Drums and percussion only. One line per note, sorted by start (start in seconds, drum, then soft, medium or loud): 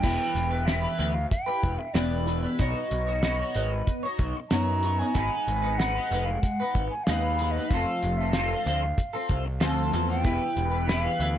0.04 kick loud
0.04 crash medium
0.36 closed hi-hat medium
0.68 snare loud
0.68 closed hi-hat medium
0.99 closed hi-hat medium
1.31 kick medium
1.31 closed hi-hat medium
1.63 kick medium
1.63 closed hi-hat medium
1.95 snare loud
1.95 closed hi-hat medium
2.28 closed hi-hat medium
2.59 kick loud
2.59 closed hi-hat medium
2.91 closed hi-hat medium
3.23 snare loud
3.23 closed hi-hat medium
3.55 closed hi-hat medium
3.87 kick medium
3.87 closed hi-hat medium
4.18 kick medium
4.18 closed hi-hat medium
4.51 snare loud
4.51 closed hi-hat medium
4.83 closed hi-hat medium
5.15 kick loud
5.15 closed hi-hat medium
5.48 closed hi-hat medium
5.80 snare loud
5.80 closed hi-hat medium
6.12 closed hi-hat medium
6.43 kick medium
6.43 closed hi-hat medium
6.75 kick medium
6.75 closed hi-hat medium
7.07 snare loud
7.07 closed hi-hat medium
7.39 closed hi-hat medium
7.71 kick loud
7.71 closed hi-hat medium
8.03 closed hi-hat medium
8.33 snare loud
8.33 closed hi-hat medium
8.67 closed hi-hat medium
8.98 kick medium
8.98 closed hi-hat medium
9.29 kick medium
9.29 closed hi-hat medium
9.61 snare loud
9.61 closed hi-hat medium
9.93 closed hi-hat medium
10.24 kick loud
10.24 closed hi-hat medium
10.57 closed hi-hat medium
10.89 snare loud
10.89 closed hi-hat medium
11.20 closed hi-hat medium